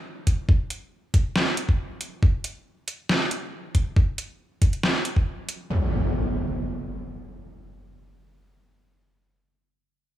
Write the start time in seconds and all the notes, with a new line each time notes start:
0.27 kick, closed hi-hat
0.49 kick
0.70 closed hi-hat
1.14 kick, closed hi-hat
1.36 snare
1.57 closed hi-hat
1.69 kick
2.01 closed hi-hat
2.23 kick
2.44 closed hi-hat
2.88 closed hi-hat
3.09 snare
3.31 closed hi-hat
3.75 kick, closed hi-hat
3.96 kick
4.18 closed hi-hat
4.62 kick, closed hi-hat
4.73 closed hi-hat
4.83 snare
5.05 closed hi-hat
5.16 kick
5.49 closed hi-hat
5.70 impact